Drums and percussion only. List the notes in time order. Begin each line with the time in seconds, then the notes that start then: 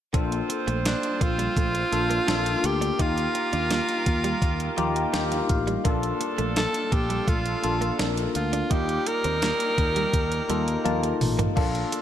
0.14 kick, closed hi-hat
0.32 closed hi-hat
0.50 closed hi-hat
0.68 closed hi-hat
0.85 snare, closed hi-hat
1.03 closed hi-hat
1.21 kick, closed hi-hat
1.39 closed hi-hat
1.57 kick, closed hi-hat
1.75 closed hi-hat
1.93 closed hi-hat
2.11 closed hi-hat
2.28 snare, closed hi-hat
2.46 closed hi-hat
2.64 closed hi-hat
2.82 closed hi-hat
2.99 kick, closed hi-hat
3.18 closed hi-hat
3.35 closed hi-hat
3.53 closed hi-hat
3.71 snare, closed hi-hat
3.89 closed hi-hat
4.06 kick, closed hi-hat
4.24 closed hi-hat
4.42 kick, closed hi-hat
4.60 closed hi-hat
4.78 closed hi-hat
4.96 closed hi-hat
5.14 snare, closed hi-hat
5.32 closed hi-hat
5.49 kick, closed hi-hat
5.68 closed hi-hat
5.85 kick, closed hi-hat
6.03 closed hi-hat
6.21 closed hi-hat
6.38 closed hi-hat
6.56 snare, closed hi-hat
6.74 closed hi-hat
6.92 kick, closed hi-hat
7.10 closed hi-hat
7.28 kick, closed hi-hat
7.46 closed hi-hat
7.64 closed hi-hat
7.82 closed hi-hat
7.99 snare, closed hi-hat
8.17 closed hi-hat
8.35 closed hi-hat
8.53 closed hi-hat
8.71 kick, closed hi-hat
8.89 closed hi-hat
9.06 closed hi-hat
9.24 closed hi-hat
9.42 snare, closed hi-hat
9.60 closed hi-hat
9.78 kick, closed hi-hat
9.96 closed hi-hat
10.13 kick, closed hi-hat
10.32 closed hi-hat
10.50 closed hi-hat
10.68 closed hi-hat
10.86 closed hi-hat, high tom
11.03 closed hi-hat
11.21 mid tom, open hi-hat
11.39 closed hi-hat, floor tom
11.57 kick, crash
11.75 closed hi-hat
11.92 closed hi-hat